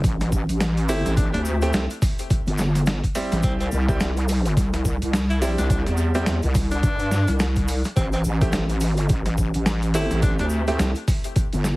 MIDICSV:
0, 0, Header, 1, 5, 480
1, 0, Start_track
1, 0, Key_signature, 0, "minor"
1, 0, Tempo, 566038
1, 993, Time_signature, 4, 2, 24, 8
1, 9976, End_track
2, 0, Start_track
2, 0, Title_t, "Grand piano"
2, 0, Program_c, 0, 0
2, 754, Note_on_c, 0, 57, 88
2, 754, Note_on_c, 0, 60, 81
2, 754, Note_on_c, 0, 64, 84
2, 754, Note_on_c, 0, 67, 96
2, 1341, Note_off_c, 0, 57, 0
2, 1341, Note_off_c, 0, 60, 0
2, 1341, Note_off_c, 0, 64, 0
2, 1341, Note_off_c, 0, 67, 0
2, 1375, Note_on_c, 0, 57, 97
2, 1375, Note_on_c, 0, 60, 89
2, 1376, Note_on_c, 0, 64, 93
2, 1376, Note_on_c, 0, 67, 105
2, 1546, Note_off_c, 0, 60, 0
2, 1547, Note_off_c, 0, 57, 0
2, 1547, Note_off_c, 0, 64, 0
2, 1547, Note_off_c, 0, 67, 0
2, 2673, Note_on_c, 0, 60, 83
2, 2673, Note_on_c, 0, 67, 99
2, 2674, Note_on_c, 0, 55, 89
2, 2674, Note_on_c, 0, 64, 84
2, 3260, Note_off_c, 0, 60, 0
2, 3260, Note_off_c, 0, 67, 0
2, 3261, Note_off_c, 0, 55, 0
2, 3261, Note_off_c, 0, 64, 0
2, 3296, Note_on_c, 0, 55, 97
2, 3296, Note_on_c, 0, 64, 93
2, 3297, Note_on_c, 0, 60, 88
2, 3298, Note_on_c, 0, 67, 111
2, 3467, Note_off_c, 0, 55, 0
2, 3467, Note_off_c, 0, 60, 0
2, 3467, Note_off_c, 0, 64, 0
2, 3468, Note_off_c, 0, 67, 0
2, 4593, Note_on_c, 0, 67, 100
2, 4594, Note_on_c, 0, 55, 90
2, 4594, Note_on_c, 0, 60, 82
2, 4594, Note_on_c, 0, 64, 83
2, 5180, Note_off_c, 0, 67, 0
2, 5181, Note_off_c, 0, 55, 0
2, 5181, Note_off_c, 0, 60, 0
2, 5181, Note_off_c, 0, 64, 0
2, 5212, Note_on_c, 0, 60, 90
2, 5213, Note_on_c, 0, 55, 97
2, 5213, Note_on_c, 0, 67, 107
2, 5214, Note_on_c, 0, 64, 88
2, 5385, Note_off_c, 0, 60, 0
2, 5386, Note_off_c, 0, 55, 0
2, 5386, Note_off_c, 0, 64, 0
2, 5386, Note_off_c, 0, 67, 0
2, 7134, Note_on_c, 0, 67, 104
2, 7135, Note_on_c, 0, 57, 97
2, 7136, Note_on_c, 0, 60, 85
2, 7136, Note_on_c, 0, 64, 89
2, 7306, Note_off_c, 0, 57, 0
2, 7306, Note_off_c, 0, 67, 0
2, 7307, Note_off_c, 0, 60, 0
2, 7307, Note_off_c, 0, 64, 0
2, 8433, Note_on_c, 0, 57, 90
2, 8433, Note_on_c, 0, 60, 83
2, 8433, Note_on_c, 0, 64, 82
2, 8433, Note_on_c, 0, 67, 102
2, 9020, Note_off_c, 0, 57, 0
2, 9020, Note_off_c, 0, 60, 0
2, 9020, Note_off_c, 0, 64, 0
2, 9020, Note_off_c, 0, 67, 0
2, 9054, Note_on_c, 0, 57, 97
2, 9054, Note_on_c, 0, 60, 89
2, 9054, Note_on_c, 0, 64, 86
2, 9055, Note_on_c, 0, 67, 108
2, 9226, Note_off_c, 0, 57, 0
2, 9226, Note_off_c, 0, 60, 0
2, 9226, Note_off_c, 0, 64, 0
2, 9226, Note_off_c, 0, 67, 0
2, 9976, End_track
3, 0, Start_track
3, 0, Title_t, "Tenor saxophone"
3, 0, Program_c, 1, 66
3, 750, Note_on_c, 1, 64, 93
3, 952, Note_off_c, 1, 64, 0
3, 987, Note_on_c, 1, 62, 87
3, 1081, Note_off_c, 1, 62, 0
3, 1129, Note_on_c, 1, 62, 76
3, 1194, Note_off_c, 1, 62, 0
3, 2910, Note_on_c, 1, 60, 90
3, 3002, Note_off_c, 1, 60, 0
3, 3050, Note_on_c, 1, 60, 77
3, 3115, Note_off_c, 1, 60, 0
3, 4493, Note_on_c, 1, 64, 89
3, 4557, Note_off_c, 1, 64, 0
3, 4592, Note_on_c, 1, 64, 78
3, 4683, Note_off_c, 1, 64, 0
3, 4731, Note_on_c, 1, 62, 88
3, 4796, Note_off_c, 1, 62, 0
3, 4832, Note_on_c, 1, 62, 78
3, 4923, Note_off_c, 1, 62, 0
3, 5693, Note_on_c, 1, 62, 95
3, 6357, Note_off_c, 1, 62, 0
3, 6752, Note_on_c, 1, 60, 93
3, 6843, Note_off_c, 1, 60, 0
3, 6897, Note_on_c, 1, 60, 82
3, 6959, Note_off_c, 1, 60, 0
3, 8436, Note_on_c, 1, 64, 97
3, 8635, Note_off_c, 1, 64, 0
3, 8673, Note_on_c, 1, 62, 91
3, 8763, Note_off_c, 1, 62, 0
3, 8816, Note_on_c, 1, 62, 81
3, 8878, Note_off_c, 1, 62, 0
3, 9976, End_track
4, 0, Start_track
4, 0, Title_t, "Wobble bass"
4, 0, Program_c, 2, 39
4, 36, Note_on_c, 2, 33, 97
4, 393, Note_off_c, 2, 33, 0
4, 416, Note_on_c, 2, 33, 97
4, 872, Note_off_c, 2, 33, 0
4, 895, Note_on_c, 2, 33, 98
4, 1112, Note_off_c, 2, 33, 0
4, 1134, Note_on_c, 2, 38, 97
4, 1457, Note_off_c, 2, 38, 0
4, 1473, Note_on_c, 2, 36, 97
4, 1591, Note_off_c, 2, 36, 0
4, 2093, Note_on_c, 2, 31, 96
4, 2551, Note_off_c, 2, 31, 0
4, 2814, Note_on_c, 2, 33, 95
4, 2897, Note_off_c, 2, 33, 0
4, 2914, Note_on_c, 2, 36, 98
4, 3138, Note_off_c, 2, 36, 0
4, 3156, Note_on_c, 2, 36, 101
4, 3379, Note_off_c, 2, 36, 0
4, 3396, Note_on_c, 2, 36, 97
4, 3858, Note_off_c, 2, 36, 0
4, 3875, Note_on_c, 2, 36, 97
4, 4232, Note_off_c, 2, 36, 0
4, 4257, Note_on_c, 2, 36, 100
4, 4713, Note_off_c, 2, 36, 0
4, 4737, Note_on_c, 2, 36, 96
4, 4953, Note_off_c, 2, 36, 0
4, 4979, Note_on_c, 2, 40, 99
4, 5299, Note_off_c, 2, 40, 0
4, 5316, Note_on_c, 2, 40, 96
4, 5433, Note_off_c, 2, 40, 0
4, 5457, Note_on_c, 2, 36, 98
4, 5778, Note_off_c, 2, 36, 0
4, 5795, Note_on_c, 2, 43, 100
4, 6153, Note_off_c, 2, 43, 0
4, 6179, Note_on_c, 2, 36, 101
4, 6634, Note_off_c, 2, 36, 0
4, 6756, Note_on_c, 2, 33, 101
4, 6978, Note_off_c, 2, 33, 0
4, 6995, Note_on_c, 2, 33, 98
4, 7218, Note_off_c, 2, 33, 0
4, 7233, Note_on_c, 2, 33, 96
4, 7697, Note_off_c, 2, 33, 0
4, 7716, Note_on_c, 2, 33, 99
4, 8073, Note_off_c, 2, 33, 0
4, 8097, Note_on_c, 2, 33, 98
4, 8553, Note_off_c, 2, 33, 0
4, 8576, Note_on_c, 2, 33, 100
4, 8792, Note_off_c, 2, 33, 0
4, 8816, Note_on_c, 2, 38, 98
4, 9138, Note_off_c, 2, 38, 0
4, 9156, Note_on_c, 2, 36, 97
4, 9273, Note_off_c, 2, 36, 0
4, 9778, Note_on_c, 2, 31, 98
4, 9976, Note_off_c, 2, 31, 0
4, 9976, End_track
5, 0, Start_track
5, 0, Title_t, "Drums"
5, 34, Note_on_c, 9, 36, 110
5, 34, Note_on_c, 9, 69, 51
5, 37, Note_on_c, 9, 42, 64
5, 119, Note_off_c, 9, 36, 0
5, 119, Note_off_c, 9, 69, 0
5, 122, Note_off_c, 9, 42, 0
5, 175, Note_on_c, 9, 69, 25
5, 179, Note_on_c, 9, 40, 57
5, 179, Note_on_c, 9, 42, 41
5, 259, Note_off_c, 9, 69, 0
5, 263, Note_off_c, 9, 40, 0
5, 263, Note_off_c, 9, 42, 0
5, 273, Note_on_c, 9, 36, 60
5, 274, Note_on_c, 9, 69, 89
5, 358, Note_off_c, 9, 36, 0
5, 359, Note_off_c, 9, 69, 0
5, 417, Note_on_c, 9, 42, 53
5, 417, Note_on_c, 9, 69, 41
5, 501, Note_off_c, 9, 42, 0
5, 502, Note_off_c, 9, 69, 0
5, 512, Note_on_c, 9, 38, 123
5, 512, Note_on_c, 9, 42, 70
5, 513, Note_on_c, 9, 69, 49
5, 597, Note_off_c, 9, 38, 0
5, 597, Note_off_c, 9, 42, 0
5, 598, Note_off_c, 9, 69, 0
5, 655, Note_on_c, 9, 42, 40
5, 656, Note_on_c, 9, 69, 28
5, 740, Note_off_c, 9, 42, 0
5, 741, Note_off_c, 9, 69, 0
5, 752, Note_on_c, 9, 69, 104
5, 754, Note_on_c, 9, 46, 65
5, 837, Note_off_c, 9, 69, 0
5, 839, Note_off_c, 9, 46, 0
5, 896, Note_on_c, 9, 69, 40
5, 898, Note_on_c, 9, 40, 42
5, 898, Note_on_c, 9, 42, 56
5, 981, Note_off_c, 9, 69, 0
5, 982, Note_off_c, 9, 40, 0
5, 982, Note_off_c, 9, 42, 0
5, 991, Note_on_c, 9, 69, 55
5, 994, Note_on_c, 9, 36, 122
5, 994, Note_on_c, 9, 42, 70
5, 1076, Note_off_c, 9, 69, 0
5, 1079, Note_off_c, 9, 36, 0
5, 1079, Note_off_c, 9, 42, 0
5, 1135, Note_on_c, 9, 69, 24
5, 1138, Note_on_c, 9, 40, 40
5, 1138, Note_on_c, 9, 42, 41
5, 1219, Note_off_c, 9, 69, 0
5, 1222, Note_off_c, 9, 40, 0
5, 1222, Note_off_c, 9, 42, 0
5, 1232, Note_on_c, 9, 69, 103
5, 1317, Note_off_c, 9, 69, 0
5, 1370, Note_on_c, 9, 69, 44
5, 1378, Note_on_c, 9, 42, 55
5, 1455, Note_off_c, 9, 69, 0
5, 1463, Note_off_c, 9, 42, 0
5, 1467, Note_on_c, 9, 69, 58
5, 1476, Note_on_c, 9, 38, 127
5, 1476, Note_on_c, 9, 42, 69
5, 1552, Note_off_c, 9, 69, 0
5, 1561, Note_off_c, 9, 38, 0
5, 1561, Note_off_c, 9, 42, 0
5, 1613, Note_on_c, 9, 69, 30
5, 1618, Note_on_c, 9, 42, 39
5, 1698, Note_off_c, 9, 69, 0
5, 1703, Note_off_c, 9, 42, 0
5, 1713, Note_on_c, 9, 36, 113
5, 1714, Note_on_c, 9, 69, 91
5, 1717, Note_on_c, 9, 46, 62
5, 1798, Note_off_c, 9, 36, 0
5, 1799, Note_off_c, 9, 69, 0
5, 1802, Note_off_c, 9, 46, 0
5, 1855, Note_on_c, 9, 69, 42
5, 1859, Note_on_c, 9, 42, 58
5, 1940, Note_off_c, 9, 69, 0
5, 1943, Note_off_c, 9, 42, 0
5, 1953, Note_on_c, 9, 69, 51
5, 1954, Note_on_c, 9, 36, 114
5, 1955, Note_on_c, 9, 42, 65
5, 2038, Note_off_c, 9, 36, 0
5, 2038, Note_off_c, 9, 69, 0
5, 2040, Note_off_c, 9, 42, 0
5, 2091, Note_on_c, 9, 69, 29
5, 2100, Note_on_c, 9, 42, 40
5, 2176, Note_off_c, 9, 69, 0
5, 2185, Note_off_c, 9, 42, 0
5, 2187, Note_on_c, 9, 69, 98
5, 2197, Note_on_c, 9, 38, 64
5, 2272, Note_off_c, 9, 69, 0
5, 2282, Note_off_c, 9, 38, 0
5, 2334, Note_on_c, 9, 40, 37
5, 2334, Note_on_c, 9, 42, 56
5, 2336, Note_on_c, 9, 69, 44
5, 2419, Note_off_c, 9, 40, 0
5, 2419, Note_off_c, 9, 42, 0
5, 2421, Note_off_c, 9, 69, 0
5, 2426, Note_on_c, 9, 69, 51
5, 2435, Note_on_c, 9, 38, 122
5, 2435, Note_on_c, 9, 42, 71
5, 2511, Note_off_c, 9, 69, 0
5, 2520, Note_off_c, 9, 38, 0
5, 2520, Note_off_c, 9, 42, 0
5, 2575, Note_on_c, 9, 36, 62
5, 2578, Note_on_c, 9, 42, 40
5, 2579, Note_on_c, 9, 69, 26
5, 2659, Note_off_c, 9, 36, 0
5, 2663, Note_off_c, 9, 42, 0
5, 2663, Note_off_c, 9, 69, 0
5, 2672, Note_on_c, 9, 46, 62
5, 2672, Note_on_c, 9, 69, 97
5, 2757, Note_off_c, 9, 46, 0
5, 2757, Note_off_c, 9, 69, 0
5, 2813, Note_on_c, 9, 69, 39
5, 2816, Note_on_c, 9, 40, 41
5, 2816, Note_on_c, 9, 42, 57
5, 2898, Note_off_c, 9, 69, 0
5, 2901, Note_off_c, 9, 40, 0
5, 2901, Note_off_c, 9, 42, 0
5, 2906, Note_on_c, 9, 69, 62
5, 2913, Note_on_c, 9, 36, 126
5, 2915, Note_on_c, 9, 42, 68
5, 2991, Note_off_c, 9, 69, 0
5, 2998, Note_off_c, 9, 36, 0
5, 3000, Note_off_c, 9, 42, 0
5, 3057, Note_on_c, 9, 42, 39
5, 3058, Note_on_c, 9, 69, 27
5, 3142, Note_off_c, 9, 42, 0
5, 3142, Note_off_c, 9, 69, 0
5, 3151, Note_on_c, 9, 69, 87
5, 3236, Note_off_c, 9, 69, 0
5, 3294, Note_on_c, 9, 36, 113
5, 3297, Note_on_c, 9, 69, 41
5, 3379, Note_off_c, 9, 36, 0
5, 3382, Note_off_c, 9, 69, 0
5, 3392, Note_on_c, 9, 69, 53
5, 3397, Note_on_c, 9, 38, 127
5, 3397, Note_on_c, 9, 42, 67
5, 3477, Note_off_c, 9, 69, 0
5, 3482, Note_off_c, 9, 38, 0
5, 3482, Note_off_c, 9, 42, 0
5, 3535, Note_on_c, 9, 69, 27
5, 3538, Note_on_c, 9, 42, 40
5, 3620, Note_off_c, 9, 69, 0
5, 3623, Note_off_c, 9, 42, 0
5, 3632, Note_on_c, 9, 69, 89
5, 3637, Note_on_c, 9, 46, 61
5, 3717, Note_off_c, 9, 69, 0
5, 3722, Note_off_c, 9, 46, 0
5, 3777, Note_on_c, 9, 69, 38
5, 3778, Note_on_c, 9, 42, 54
5, 3862, Note_off_c, 9, 42, 0
5, 3862, Note_off_c, 9, 69, 0
5, 3874, Note_on_c, 9, 36, 114
5, 3876, Note_on_c, 9, 69, 56
5, 3877, Note_on_c, 9, 42, 66
5, 3959, Note_off_c, 9, 36, 0
5, 3961, Note_off_c, 9, 42, 0
5, 3961, Note_off_c, 9, 69, 0
5, 4012, Note_on_c, 9, 69, 28
5, 4017, Note_on_c, 9, 40, 55
5, 4017, Note_on_c, 9, 42, 39
5, 4097, Note_off_c, 9, 69, 0
5, 4101, Note_off_c, 9, 40, 0
5, 4101, Note_off_c, 9, 42, 0
5, 4113, Note_on_c, 9, 69, 108
5, 4114, Note_on_c, 9, 36, 66
5, 4198, Note_off_c, 9, 36, 0
5, 4198, Note_off_c, 9, 69, 0
5, 4257, Note_on_c, 9, 42, 53
5, 4258, Note_on_c, 9, 69, 44
5, 4342, Note_off_c, 9, 42, 0
5, 4342, Note_off_c, 9, 69, 0
5, 4354, Note_on_c, 9, 38, 127
5, 4354, Note_on_c, 9, 42, 70
5, 4364, Note_on_c, 9, 69, 59
5, 4439, Note_off_c, 9, 38, 0
5, 4439, Note_off_c, 9, 42, 0
5, 4448, Note_off_c, 9, 69, 0
5, 4495, Note_on_c, 9, 69, 31
5, 4497, Note_on_c, 9, 42, 37
5, 4580, Note_off_c, 9, 69, 0
5, 4581, Note_off_c, 9, 42, 0
5, 4594, Note_on_c, 9, 46, 61
5, 4597, Note_on_c, 9, 69, 101
5, 4679, Note_off_c, 9, 46, 0
5, 4682, Note_off_c, 9, 69, 0
5, 4734, Note_on_c, 9, 69, 43
5, 4735, Note_on_c, 9, 40, 41
5, 4735, Note_on_c, 9, 42, 55
5, 4819, Note_off_c, 9, 69, 0
5, 4820, Note_off_c, 9, 40, 0
5, 4820, Note_off_c, 9, 42, 0
5, 4834, Note_on_c, 9, 36, 123
5, 4834, Note_on_c, 9, 42, 68
5, 4835, Note_on_c, 9, 69, 54
5, 4918, Note_off_c, 9, 36, 0
5, 4919, Note_off_c, 9, 42, 0
5, 4920, Note_off_c, 9, 69, 0
5, 4973, Note_on_c, 9, 40, 40
5, 4973, Note_on_c, 9, 42, 38
5, 4976, Note_on_c, 9, 69, 30
5, 5058, Note_off_c, 9, 40, 0
5, 5058, Note_off_c, 9, 42, 0
5, 5061, Note_off_c, 9, 69, 0
5, 5065, Note_on_c, 9, 69, 92
5, 5150, Note_off_c, 9, 69, 0
5, 5209, Note_on_c, 9, 69, 40
5, 5215, Note_on_c, 9, 42, 54
5, 5293, Note_off_c, 9, 69, 0
5, 5299, Note_off_c, 9, 42, 0
5, 5311, Note_on_c, 9, 38, 126
5, 5311, Note_on_c, 9, 42, 67
5, 5312, Note_on_c, 9, 69, 50
5, 5395, Note_off_c, 9, 38, 0
5, 5395, Note_off_c, 9, 42, 0
5, 5397, Note_off_c, 9, 69, 0
5, 5447, Note_on_c, 9, 69, 25
5, 5455, Note_on_c, 9, 42, 37
5, 5532, Note_off_c, 9, 69, 0
5, 5539, Note_off_c, 9, 42, 0
5, 5551, Note_on_c, 9, 69, 92
5, 5553, Note_on_c, 9, 36, 110
5, 5553, Note_on_c, 9, 46, 61
5, 5636, Note_off_c, 9, 69, 0
5, 5638, Note_off_c, 9, 36, 0
5, 5638, Note_off_c, 9, 46, 0
5, 5690, Note_on_c, 9, 69, 41
5, 5694, Note_on_c, 9, 42, 54
5, 5775, Note_off_c, 9, 69, 0
5, 5779, Note_off_c, 9, 42, 0
5, 5792, Note_on_c, 9, 42, 62
5, 5793, Note_on_c, 9, 69, 60
5, 5794, Note_on_c, 9, 36, 118
5, 5877, Note_off_c, 9, 42, 0
5, 5878, Note_off_c, 9, 36, 0
5, 5878, Note_off_c, 9, 69, 0
5, 5928, Note_on_c, 9, 69, 27
5, 5934, Note_on_c, 9, 42, 38
5, 6013, Note_off_c, 9, 69, 0
5, 6019, Note_off_c, 9, 42, 0
5, 6033, Note_on_c, 9, 38, 63
5, 6036, Note_on_c, 9, 69, 100
5, 6118, Note_off_c, 9, 38, 0
5, 6120, Note_off_c, 9, 69, 0
5, 6169, Note_on_c, 9, 69, 38
5, 6175, Note_on_c, 9, 40, 36
5, 6175, Note_on_c, 9, 42, 50
5, 6254, Note_off_c, 9, 69, 0
5, 6260, Note_off_c, 9, 40, 0
5, 6260, Note_off_c, 9, 42, 0
5, 6270, Note_on_c, 9, 69, 54
5, 6275, Note_on_c, 9, 38, 127
5, 6275, Note_on_c, 9, 42, 66
5, 6355, Note_off_c, 9, 69, 0
5, 6359, Note_off_c, 9, 38, 0
5, 6359, Note_off_c, 9, 42, 0
5, 6409, Note_on_c, 9, 69, 29
5, 6415, Note_on_c, 9, 36, 62
5, 6416, Note_on_c, 9, 42, 37
5, 6494, Note_off_c, 9, 69, 0
5, 6500, Note_off_c, 9, 36, 0
5, 6501, Note_off_c, 9, 42, 0
5, 6512, Note_on_c, 9, 69, 104
5, 6516, Note_on_c, 9, 46, 64
5, 6597, Note_off_c, 9, 69, 0
5, 6601, Note_off_c, 9, 46, 0
5, 6650, Note_on_c, 9, 69, 41
5, 6659, Note_on_c, 9, 40, 39
5, 6659, Note_on_c, 9, 42, 55
5, 6734, Note_off_c, 9, 69, 0
5, 6744, Note_off_c, 9, 40, 0
5, 6744, Note_off_c, 9, 42, 0
5, 6754, Note_on_c, 9, 36, 119
5, 6755, Note_on_c, 9, 69, 52
5, 6756, Note_on_c, 9, 42, 63
5, 6839, Note_off_c, 9, 36, 0
5, 6839, Note_off_c, 9, 69, 0
5, 6841, Note_off_c, 9, 42, 0
5, 6887, Note_on_c, 9, 69, 28
5, 6897, Note_on_c, 9, 42, 36
5, 6972, Note_off_c, 9, 69, 0
5, 6981, Note_off_c, 9, 42, 0
5, 6989, Note_on_c, 9, 69, 96
5, 7074, Note_off_c, 9, 69, 0
5, 7133, Note_on_c, 9, 69, 39
5, 7135, Note_on_c, 9, 36, 107
5, 7135, Note_on_c, 9, 42, 52
5, 7218, Note_off_c, 9, 69, 0
5, 7220, Note_off_c, 9, 36, 0
5, 7220, Note_off_c, 9, 42, 0
5, 7227, Note_on_c, 9, 69, 55
5, 7233, Note_on_c, 9, 38, 119
5, 7233, Note_on_c, 9, 42, 65
5, 7312, Note_off_c, 9, 69, 0
5, 7318, Note_off_c, 9, 38, 0
5, 7318, Note_off_c, 9, 42, 0
5, 7371, Note_on_c, 9, 69, 24
5, 7374, Note_on_c, 9, 42, 37
5, 7456, Note_off_c, 9, 69, 0
5, 7459, Note_off_c, 9, 42, 0
5, 7467, Note_on_c, 9, 69, 95
5, 7470, Note_on_c, 9, 46, 66
5, 7552, Note_off_c, 9, 69, 0
5, 7555, Note_off_c, 9, 46, 0
5, 7607, Note_on_c, 9, 69, 39
5, 7612, Note_on_c, 9, 42, 52
5, 7692, Note_off_c, 9, 69, 0
5, 7697, Note_off_c, 9, 42, 0
5, 7708, Note_on_c, 9, 69, 53
5, 7711, Note_on_c, 9, 42, 62
5, 7715, Note_on_c, 9, 36, 114
5, 7793, Note_off_c, 9, 69, 0
5, 7795, Note_off_c, 9, 42, 0
5, 7799, Note_off_c, 9, 36, 0
5, 7849, Note_on_c, 9, 69, 28
5, 7850, Note_on_c, 9, 40, 54
5, 7850, Note_on_c, 9, 42, 36
5, 7933, Note_off_c, 9, 69, 0
5, 7935, Note_off_c, 9, 40, 0
5, 7935, Note_off_c, 9, 42, 0
5, 7951, Note_on_c, 9, 69, 86
5, 7954, Note_on_c, 9, 36, 63
5, 8036, Note_off_c, 9, 69, 0
5, 8039, Note_off_c, 9, 36, 0
5, 8091, Note_on_c, 9, 42, 51
5, 8091, Note_on_c, 9, 69, 45
5, 8175, Note_off_c, 9, 69, 0
5, 8176, Note_off_c, 9, 42, 0
5, 8191, Note_on_c, 9, 38, 121
5, 8191, Note_on_c, 9, 42, 64
5, 8192, Note_on_c, 9, 69, 55
5, 8276, Note_off_c, 9, 38, 0
5, 8276, Note_off_c, 9, 42, 0
5, 8276, Note_off_c, 9, 69, 0
5, 8330, Note_on_c, 9, 69, 29
5, 8331, Note_on_c, 9, 42, 36
5, 8414, Note_off_c, 9, 69, 0
5, 8416, Note_off_c, 9, 42, 0
5, 8428, Note_on_c, 9, 46, 67
5, 8434, Note_on_c, 9, 69, 99
5, 8513, Note_off_c, 9, 46, 0
5, 8519, Note_off_c, 9, 69, 0
5, 8570, Note_on_c, 9, 69, 42
5, 8571, Note_on_c, 9, 40, 40
5, 8571, Note_on_c, 9, 42, 52
5, 8655, Note_off_c, 9, 69, 0
5, 8656, Note_off_c, 9, 40, 0
5, 8656, Note_off_c, 9, 42, 0
5, 8670, Note_on_c, 9, 42, 61
5, 8670, Note_on_c, 9, 69, 51
5, 8674, Note_on_c, 9, 36, 114
5, 8754, Note_off_c, 9, 69, 0
5, 8755, Note_off_c, 9, 42, 0
5, 8759, Note_off_c, 9, 36, 0
5, 8808, Note_on_c, 9, 69, 23
5, 8814, Note_on_c, 9, 40, 40
5, 8814, Note_on_c, 9, 42, 35
5, 8893, Note_off_c, 9, 69, 0
5, 8898, Note_off_c, 9, 40, 0
5, 8898, Note_off_c, 9, 42, 0
5, 8901, Note_on_c, 9, 69, 85
5, 8986, Note_off_c, 9, 69, 0
5, 9050, Note_on_c, 9, 69, 38
5, 9055, Note_on_c, 9, 42, 52
5, 9134, Note_off_c, 9, 69, 0
5, 9139, Note_off_c, 9, 42, 0
5, 9152, Note_on_c, 9, 69, 54
5, 9153, Note_on_c, 9, 38, 114
5, 9153, Note_on_c, 9, 42, 61
5, 9237, Note_off_c, 9, 69, 0
5, 9238, Note_off_c, 9, 38, 0
5, 9238, Note_off_c, 9, 42, 0
5, 9288, Note_on_c, 9, 69, 24
5, 9294, Note_on_c, 9, 42, 36
5, 9373, Note_off_c, 9, 69, 0
5, 9379, Note_off_c, 9, 42, 0
5, 9394, Note_on_c, 9, 36, 102
5, 9395, Note_on_c, 9, 46, 66
5, 9396, Note_on_c, 9, 69, 82
5, 9479, Note_off_c, 9, 36, 0
5, 9480, Note_off_c, 9, 46, 0
5, 9481, Note_off_c, 9, 69, 0
5, 9533, Note_on_c, 9, 42, 52
5, 9533, Note_on_c, 9, 69, 35
5, 9618, Note_off_c, 9, 42, 0
5, 9618, Note_off_c, 9, 69, 0
5, 9630, Note_on_c, 9, 42, 62
5, 9634, Note_on_c, 9, 36, 105
5, 9635, Note_on_c, 9, 69, 52
5, 9715, Note_off_c, 9, 42, 0
5, 9719, Note_off_c, 9, 36, 0
5, 9720, Note_off_c, 9, 69, 0
5, 9774, Note_on_c, 9, 42, 36
5, 9781, Note_on_c, 9, 69, 27
5, 9858, Note_off_c, 9, 42, 0
5, 9866, Note_off_c, 9, 69, 0
5, 9872, Note_on_c, 9, 38, 61
5, 9875, Note_on_c, 9, 69, 82
5, 9956, Note_off_c, 9, 38, 0
5, 9960, Note_off_c, 9, 69, 0
5, 9976, End_track
0, 0, End_of_file